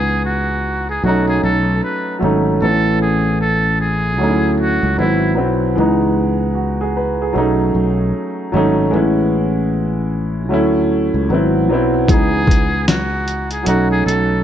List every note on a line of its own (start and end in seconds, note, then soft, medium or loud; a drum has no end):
0.00 1.00 C#2 loud
0.00 0.51 E3 medium
0.00 0.52 G#3 medium
0.00 0.53 B3 medium
0.00 0.54 D#4 medium
0.00 0.21 G#4 loud
0.25 0.84 F#4 medium
0.89 1.06 G#4 medium
1.03 1.40 B1 medium
1.03 2.01 F#3 medium
1.03 2.02 A3 medium
1.03 2.03 C#4 medium
1.03 1.25 F#4 medium
1.08 2.04 D#4 medium
1.28 1.45 G#4 medium
1.43 1.80 B1 medium
1.43 1.79 A4 medium
1.83 2.18 B4 medium
2.19 2.59 G#1 medium
2.19 2.49 F#3 medium
2.19 2.50 A3 medium
2.19 2.51 C#4 medium
2.24 2.52 D#4 medium
2.61 4.20 A1 loud
2.61 3.69 A3 medium
2.61 3.69 B3 medium
2.61 2.71 C4 soft
2.61 3.03 A4 medium
2.66 3.71 E4 medium
2.71 3.74 C#4 medium
3.02 3.43 G#4 medium
3.41 3.82 A4 medium
3.80 4.55 G#4 medium
4.18 4.79 D2 medium
4.18 4.85 F#3 medium
4.18 4.86 A3 medium
4.18 4.87 C#4 medium
4.22 4.29 D#4 medium
4.29 4.90 E4 medium
4.60 5.01 F#4 medium
4.83 4.97 C#2 medium
4.97 5.38 G#1 loud
4.97 5.31 F#3 medium
4.97 5.31 B3 medium
4.97 5.32 C4 medium
4.97 5.34 E4 medium
5.02 5.33 E4 medium
5.35 5.75 B1 medium
5.35 5.65 F#3 medium
5.35 5.66 B3 medium
5.35 5.67 C4 medium
5.39 5.67 E4 medium
5.76 7.31 C#2 loud
5.76 6.84 E3 medium
5.76 6.84 G#3 medium
5.76 6.85 B3 medium
5.80 6.86 D#4 medium
6.55 6.78 F#4 medium
6.81 6.95 G#4 medium
6.97 7.19 B4 medium
7.22 7.58 G#4 medium
7.33 7.72 B1 medium
7.33 8.32 F#3 medium
7.33 8.33 A3 medium
7.33 8.34 C#4 medium
7.38 8.34 D#4 medium
7.75 8.11 B1 medium
8.52 8.90 G#1 medium
8.52 8.82 F#3 medium
8.52 8.82 A3 medium
8.52 8.83 C#4 medium
8.57 8.84 D#4 medium
8.91 10.51 A1 medium
8.91 9.99 G#3 medium
8.91 10.00 B3 medium
8.91 10.01 C#4 medium
8.96 10.02 E4 medium
10.49 11.10 D2 medium
10.49 11.16 F#3 medium
10.49 11.17 A3 medium
10.49 11.18 C#4 medium
10.54 11.19 E4 loud
11.14 11.29 C#2 medium
11.29 11.70 G#1 medium
11.29 11.63 F#3 medium
11.29 11.64 B3 medium
11.29 11.64 C4 medium
11.34 11.65 E4 medium
11.69 12.06 B1 medium
11.69 11.98 F#3 medium
11.69 11.99 B3 medium
11.69 12.00 C4 medium
11.74 12.00 E4 loud
12.08 13.62 C#2 loud
12.08 13.16 E3 medium
12.08 13.17 G#3 medium
12.08 13.17 B3 medium
12.08 12.90 G#4 loud
12.08 kick medium
12.08 closed hi-hat medium
12.13 13.18 D#4 medium
12.47 kick medium
12.47 closed hi-hat medium
12.88 13.48 F#4 medium
12.88 snare loud
12.88 closed hi-hat medium
13.28 closed hi-hat soft
13.51 13.69 G#4 medium
13.51 closed hi-hat soft
13.63 14.03 B1 medium
13.63 14.44 F#3 medium
13.63 14.44 A3 medium
13.63 14.44 C#4 medium
13.63 closed hi-hat medium
13.67 14.44 D#4 medium
13.67 13.88 F#4 medium
13.91 14.05 G#4 medium
14.06 14.43 B1 medium
14.06 14.42 A4 medium
14.06 closed hi-hat medium